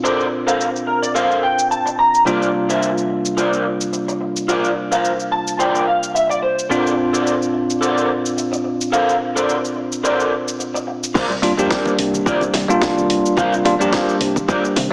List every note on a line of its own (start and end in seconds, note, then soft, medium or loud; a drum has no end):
0.00 2.23 A#2 medium
0.00 2.23 C4 medium
0.00 2.24 D4 medium
0.00 2.24 F4 medium
0.00 0.25 A4 medium
0.00 0.25 A#4 medium
0.04 0.26 C5 medium
0.04 0.26 D5 loud
0.04 shaker soft
0.20 shaker soft
0.47 0.67 A4 medium
0.47 0.67 A#4 medium
0.47 0.67 C5 medium
0.47 0.67 F5 medium
0.47 shaker medium
0.61 shaker soft
0.76 shaker soft
0.87 1.01 A#4 medium
0.87 muted clean electric guitar stroke soft
1.02 1.14 D5 medium
1.02 shaker medium
1.15 1.43 A4 medium
1.15 1.43 A#4 medium
1.15 1.43 C5 medium
1.15 1.43 F5 medium
1.15 shaker soft
1.31 shaker soft
1.43 1.69 G5 medium
1.59 shaker medium
1.70 1.97 A5 medium
1.70 muted clean electric guitar stroke soft
1.70 shaker soft
1.86 muted clean electric guitar stroke medium
1.86 shaker soft
1.98 2.24 A#5 medium
1.98 muted clean electric guitar stroke soft
2.15 shaker medium
2.25 6.67 C3 medium
2.25 6.68 G3 medium
2.25 6.68 A#3 medium
2.25 6.68 D4 medium
2.25 2.48 F4 loud
2.25 6.68 F4 medium
2.25 2.48 A#4 medium
2.25 2.48 C5 medium
2.25 2.48 D5 loud
2.25 shaker soft
2.42 shaker soft
2.69 2.89 F4 medium
2.69 2.89 A#4 medium
2.69 2.90 C5 medium
2.69 2.90 E5 medium
2.69 shaker medium
2.83 shaker soft
2.98 shaker soft
3.09 muted clean electric guitar stroke soft
3.25 shaker medium
3.37 3.65 F4 medium
3.37 3.65 A#4 medium
3.37 3.65 C5 medium
3.37 3.65 D5 medium
3.37 shaker soft
3.53 shaker soft
3.81 shaker medium
3.93 muted clean electric guitar stroke soft
3.93 shaker soft
4.08 muted clean electric guitar stroke medium
4.08 shaker soft
4.21 muted clean electric guitar stroke soft
4.37 shaker medium
4.48 4.70 F4 medium
4.48 4.70 A#4 medium
4.48 4.70 C5 medium
4.48 4.70 D5 loud
4.48 shaker medium
4.64 shaker soft
4.91 5.12 F4 medium
4.91 5.12 A#4 medium
4.91 5.12 C5 medium
4.91 5.12 F5 medium
4.91 shaker medium
5.05 shaker soft
5.20 shaker soft
5.31 5.58 A5 medium
5.31 muted clean electric guitar stroke soft
5.48 shaker medium
5.59 5.87 F4 medium
5.59 5.87 A#4 medium
5.59 5.87 C5 medium
5.59 5.87 D5 medium
5.59 5.85 G5 medium
5.59 shaker medium
5.75 shaker soft
5.87 6.13 F5 medium
6.03 shaker medium
6.14 6.29 E5 medium
6.14 muted clean electric guitar stroke soft
6.14 shaker soft
6.29 6.42 D5 medium
6.29 muted clean electric guitar stroke medium
6.29 shaker soft
6.42 6.69 C5 medium
6.42 muted clean electric guitar stroke soft
6.59 shaker medium
6.69 11.12 A#2 medium
6.69 11.12 C4 medium
6.69 11.12 D4 medium
6.69 11.13 F4 medium
6.69 6.92 A4 medium
6.69 6.92 A#4 medium
6.69 6.92 C5 medium
6.69 6.92 D5 loud
6.69 shaker medium
6.87 shaker soft
7.13 7.33 A4 medium
7.13 7.34 A#4 medium
7.13 7.34 C5 medium
7.13 7.34 D5 medium
7.13 shaker medium
7.27 shaker soft
7.42 shaker soft
7.53 muted clean electric guitar stroke soft
7.70 shaker medium
7.81 8.09 A4 medium
7.81 8.09 A#4 medium
7.81 8.09 C5 medium
7.81 8.10 D5 medium
7.81 shaker medium
7.98 shaker soft
8.26 shaker medium
8.37 muted clean electric guitar stroke soft
8.37 shaker medium
8.52 muted clean electric guitar stroke medium
8.52 shaker soft
8.64 muted clean electric guitar stroke soft
8.81 shaker medium
8.92 9.14 A4 loud
8.92 9.14 A#4 medium
8.92 9.14 C5 medium
8.92 9.14 F5 loud
8.92 shaker medium
9.09 shaker soft
9.35 9.56 A4 medium
9.35 9.56 A#4 medium
9.35 9.56 C5 medium
9.35 9.56 D5 medium
9.35 shaker medium
9.49 shaker soft
9.65 shaker soft
9.76 muted clean electric guitar stroke soft
9.92 shaker medium
10.04 10.32 A4 medium
10.04 10.32 A#4 medium
10.04 10.32 C5 medium
10.04 10.32 D5 medium
10.04 shaker medium
10.20 shaker soft
10.48 shaker medium
10.59 muted clean electric guitar stroke soft
10.59 shaker medium
10.74 muted clean electric guitar stroke medium
10.74 shaker soft
10.87 muted clean electric guitar stroke soft
11.04 shaker medium
11.14 11.52 C2 loud
11.14 11.30 F4 loud
11.14 11.30 A#4 medium
11.14 11.30 C5 loud
11.14 11.30 D5 loud
11.14 kick loud
11.14 crash loud
11.14 shaker medium
11.29 low conga medium
11.29 shaker soft
11.42 11.51 G3 medium
11.42 11.51 A#3 medium
11.42 11.52 D4 medium
11.42 11.52 F4 loud
11.42 muted clean electric guitar stroke soft
11.42 open hi-hat loud
11.42 muted conga medium
11.42 high conga medium
11.57 11.68 F2 medium
11.57 12.66 G3 medium
11.57 12.66 A#3 medium
11.57 12.67 D4 medium
11.57 11.92 F4 medium
11.57 12.67 G4 medium
11.57 11.92 A#4 medium
11.57 11.92 C5 medium
11.57 11.93 D5 medium
11.57 shaker medium
11.71 kick loud
11.71 snare loud
11.71 shaker medium
11.85 muted conga medium
11.85 shaker soft
11.98 12.20 C2 loud
11.98 open hi-hat loud
12.13 high conga medium
12.13 shaker medium
12.26 12.48 C2 medium
12.26 12.41 F4 medium
12.26 12.42 A#4 medium
12.26 12.42 C5 medium
12.26 12.42 D5 loud
12.26 kick loud
12.26 shaker medium
12.41 muted conga medium
12.41 shaker soft
12.54 12.65 C2 medium
12.54 muted clean electric guitar stroke medium
12.54 snare medium
12.54 open hi-hat loud
12.54 high conga medium
12.68 12.78 A#1 medium
12.68 13.62 G3 medium
12.68 13.62 A#3 medium
12.68 13.62 D4 medium
12.68 13.63 F4 loud
12.68 muted clean electric guitar stroke soft
12.68 shaker medium
12.81 13.19 C2 medium
12.81 kick loud
12.81 snare loud
12.81 muted conga medium
12.81 shaker medium
12.97 high conga medium
12.97 shaker soft
13.09 muted clean electric guitar stroke soft
13.09 open hi-hat loud
13.26 shaker medium
13.37 13.74 C2 loud
13.37 13.52 F4 loud
13.37 13.53 A#4 loud
13.37 13.53 C5 loud
13.37 13.53 F5 loud
13.37 kick loud
13.37 muted conga medium
13.37 shaker medium
13.52 low conga medium
13.52 shaker soft
13.65 13.74 G3 medium
13.65 13.74 A#3 medium
13.65 13.74 D4 medium
13.65 13.74 F4 loud
13.65 muted clean electric guitar stroke soft
13.65 open hi-hat loud
13.65 high conga medium
13.79 13.90 F2 medium
13.79 14.88 G3 medium
13.79 14.88 A#3 medium
13.79 14.89 D4 medium
13.79 14.14 F4 medium
13.79 14.89 G4 medium
13.79 14.14 A#4 medium
13.79 14.14 C5 medium
13.79 14.15 F5 medium
13.79 muted conga medium
13.79 shaker medium
13.93 kick loud
13.93 snare loud
13.93 shaker medium
14.09 shaker soft
14.20 14.42 C2 loud
14.20 open hi-hat loud
14.36 kick medium
14.36 muted conga medium
14.36 high conga medium
14.36 shaker medium
14.48 14.64 F4 medium
14.48 14.64 A#4 medium
14.48 14.64 C5 medium
14.48 14.64 D5 loud
14.48 kick loud
14.48 shaker medium
14.65 shaker soft
14.76 14.88 C3 medium
14.76 muted clean electric guitar stroke medium
14.76 open hi-hat loud
14.76 muted conga medium
14.76 high conga medium